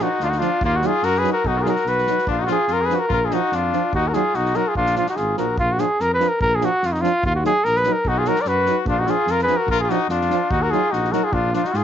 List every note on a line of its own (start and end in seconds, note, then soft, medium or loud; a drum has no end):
0.00 0.08 D4 medium
0.00 0.25 D#4 medium
0.00 0.25 F#4 medium
0.20 0.43 D2 medium
0.20 0.28 D4 medium
0.20 0.31 F4 medium
0.20 snare soft
0.27 0.40 D#4 medium
0.27 0.40 F#4 medium
0.32 snare soft
0.38 0.50 F3 medium
0.38 0.63 D4 medium
0.38 0.49 D4 medium
0.38 0.63 F4 medium
0.38 snare soft
0.61 0.85 D#2 medium
0.61 0.76 A#3 medium
0.61 0.77 F4 medium
0.61 kick loud
0.75 0.86 D#4 medium
0.75 0.88 F#4 medium
0.82 0.91 F#3 medium
0.82 0.92 D#4 medium
0.82 1.06 F4 medium
0.82 snare soft
0.86 1.06 G#4 medium
1.03 1.25 F#2 medium
1.03 1.20 F#4 medium
1.03 1.21 A#4 medium
1.03 snare soft
1.15 1.31 G#4 medium
1.15 snare soft
1.19 1.32 B4 medium
1.23 1.32 F#3 medium
1.23 1.33 D#4 medium
1.23 snare soft
1.32 1.47 F#4 medium
1.32 1.49 A#4 medium
1.44 1.67 B1 medium
1.44 1.57 D#4 medium
1.44 1.60 F#4 medium
1.44 kick medium
1.56 1.60 F4 medium
1.56 1.63 F#4 soft
1.56 1.64 A#4 medium
1.62 1.67 F4 medium
1.62 1.70 G#4 medium
1.66 1.74 F#3 medium
1.66 1.74 D#4 medium
1.66 1.87 F#4 medium
1.66 1.90 A#4 medium
1.66 snare soft
1.76 snare soft
1.85 2.08 B1 medium
1.85 2.27 F#4 medium
1.85 2.29 B4 medium
1.85 snare soft
1.98 snare soft
2.07 2.16 F#3 soft
2.07 2.16 D#4 soft
2.07 snare soft
2.18 snare soft
2.27 2.50 A#1 medium
2.27 2.41 D4 medium
2.27 2.44 F4 medium
2.27 kick medium
2.39 2.45 D#4 medium
2.39 2.50 F#4 medium
2.46 2.57 F3 medium
2.46 2.57 D4 medium
2.46 2.68 F4 medium
2.46 snare soft
2.51 2.74 G#4 medium
2.67 2.91 F2 medium
2.67 2.83 F4 medium
2.67 snare soft
2.73 2.87 A#4 medium
2.81 2.97 G#4 medium
2.86 2.98 D4 medium
2.86 3.01 B4 medium
2.90 2.99 F3 medium
2.90 snare soft
2.95 3.08 F#4 medium
3.00 3.12 A#4 medium
3.08 3.33 A#1 medium
3.08 3.22 F4 medium
3.08 kick medium
3.13 3.27 A#4 medium
3.22 3.33 F4 medium
3.22 3.35 G#4 medium
3.29 3.40 F3 medium
3.29 3.37 D4 medium
3.29 3.55 D#4 medium
3.29 snare soft
3.34 3.57 F#4 medium
3.52 3.75 F2 medium
3.52 3.94 D4 medium
3.52 3.94 F4 medium
3.52 snare soft
3.72 3.81 F3 medium
3.72 3.81 D4 medium
3.72 snare soft
3.93 4.16 D#2 medium
3.93 4.09 D#4 medium
3.93 4.09 F#4 medium
3.93 kick medium
4.08 4.17 F#4 medium
4.08 4.15 A#4 medium
4.13 4.23 F#3 medium
4.13 4.22 D#4 medium
4.13 4.37 F4 medium
4.13 4.37 G#4 medium
4.13 snare soft
4.34 4.58 B1 medium
4.34 4.59 D#4 medium
4.34 4.57 F#4 medium
4.34 snare soft
4.45 snare soft
4.54 4.63 F#3 medium
4.54 4.62 D#4 medium
4.54 4.70 F#4 medium
4.54 4.70 A#4 medium
4.54 snare soft
4.68 4.76 F4 medium
4.68 4.76 G#4 medium
4.75 4.99 A#1 medium
4.75 4.95 D4 medium
4.75 4.96 F4 medium
4.75 kick medium
4.86 snare soft
4.95 5.04 F3 medium
4.95 5.05 D4 medium
4.95 5.08 F4 medium
4.95 snare soft
4.99 5.09 D4 medium
5.06 5.18 F#4 medium
5.06 snare soft
5.11 5.19 D#4 medium
5.16 5.36 G#1 medium
5.16 5.38 F4 medium
5.16 5.37 G#4 medium
5.16 snare soft
5.37 5.57 A#1 medium
5.37 5.46 F3 soft
5.37 5.46 D4 soft
5.37 5.57 F#4 medium
5.37 5.57 A#4 medium
5.37 snare soft
5.57 5.82 A#1 medium
5.57 5.74 F4 medium
5.57 kick medium
5.72 5.82 F#4 medium
5.78 5.87 F3 medium
5.78 5.87 D4 medium
5.78 6.03 G#4 medium
5.78 snare soft
6.00 6.22 F2 medium
6.00 6.14 A#4 medium
6.00 snare soft
6.14 6.30 B4 medium
6.20 6.28 F3 medium
6.20 6.28 D4 medium
6.20 snare soft
6.28 6.41 A#4 medium
6.41 6.64 A#1 loud
6.41 6.57 A#4 loud
6.41 kick loud
6.55 6.67 G#4 medium
6.61 6.69 F3 medium
6.61 6.69 D4 medium
6.61 snare soft
6.65 6.88 F#4 medium
6.83 7.06 F2 medium
6.83 6.94 F4 medium
6.83 snare soft
6.93 7.03 D#4 medium
6.93 snare soft
7.01 7.11 F3 medium
7.01 7.11 D4 medium
7.01 7.25 F4 medium
7.01 snare soft
7.23 7.47 D#2 medium
7.23 7.35 F4 loud
7.23 kick medium
7.35 7.44 F#4 medium
7.44 7.53 F#3 medium
7.44 7.52 D#4 medium
7.44 7.66 G#4 medium
7.44 snare soft
7.64 7.87 A#1 medium
7.64 7.79 A#4 loud
7.64 snare soft
7.76 7.94 B4 medium
7.76 snare soft
7.83 7.94 F#3 medium
7.83 7.94 D#4 medium
7.83 snare soft
7.92 8.09 A#4 medium
8.05 8.28 B1 medium
8.05 8.20 D#4 medium
8.05 8.20 F#4 medium
8.05 kick medium
8.18 8.28 F4 medium
8.18 8.30 G#4 medium
8.25 8.35 F#3 medium
8.25 8.35 D#4 medium
8.25 8.42 F#4 medium
8.25 8.43 A#4 medium
8.25 snare soft
8.36 snare soft
8.40 8.49 A#4 medium
8.40 8.49 D5 medium
8.45 8.69 F#2 medium
8.45 8.87 F#4 medium
8.45 8.77 B4 medium
8.45 snare soft
8.66 8.75 F#3 soft
8.66 8.77 D#4 soft
8.66 snare soft
8.86 9.09 A#1 medium
8.86 9.00 D4 medium
8.86 9.01 F4 medium
8.86 kick loud
8.99 9.08 D#4 medium
8.99 9.11 F#4 medium
9.06 9.16 F3 medium
9.06 9.15 D4 medium
9.06 9.29 F4 medium
9.06 9.33 G#4 medium
9.06 snare soft
9.26 9.50 F2 medium
9.26 9.42 F4 medium
9.26 snare soft
9.31 9.42 A#4 medium
9.39 snare soft
9.43 9.55 D4 medium
9.43 9.58 G#4 medium
9.43 9.58 B4 medium
9.47 9.57 F3 medium
9.47 snare soft
9.57 9.70 F#4 medium
9.57 9.70 A#4 medium
9.67 9.90 A#1 medium
9.67 9.80 A#4 medium
9.67 kick medium
9.71 9.81 F4 medium
9.80 9.93 F4 medium
9.80 9.91 G#4 medium
9.89 9.98 F3 medium
9.89 9.98 D4 medium
9.89 10.10 D#4 medium
9.89 10.10 F#4 medium
9.89 snare soft
10.09 10.32 F2 medium
10.09 10.52 D4 medium
10.09 10.52 F4 medium
10.09 snare soft
10.21 snare soft
10.29 10.40 F3 medium
10.29 10.38 D4 medium
10.29 snare soft
10.50 10.73 D#2 medium
10.50 10.62 D#4 medium
10.50 10.64 F#4 medium
10.50 kick loud
10.61 10.75 F#4 medium
10.61 10.72 A#4 medium
10.71 10.81 F#3 medium
10.71 10.80 D#4 medium
10.71 10.92 F4 medium
10.71 10.94 G#4 medium
10.71 snare soft
10.90 11.15 A#1 medium
10.90 11.14 D#4 medium
10.90 11.14 F#4 medium
10.90 snare soft
11.05 snare soft
11.12 11.21 F#3 medium
11.12 11.22 D#4 medium
11.12 11.26 F#4 medium
11.12 11.25 A#4 medium
11.12 snare soft
11.24 11.34 F4 medium
11.24 11.35 G#4 medium
11.32 11.55 A#1 medium
11.32 11.53 D4 medium
11.32 11.54 F4 medium
11.32 kick medium
11.53 11.62 F3 medium
11.53 11.66 D4 medium
11.53 11.63 D4 soft
11.53 11.68 F4 medium
11.53 snare soft
11.64 11.74 D#4 medium
11.64 11.78 F#4 medium
11.64 snare soft
11.72 11.84 G#2 medium
11.72 11.84 F4 medium
11.72 snare soft
11.77 11.84 G#4 medium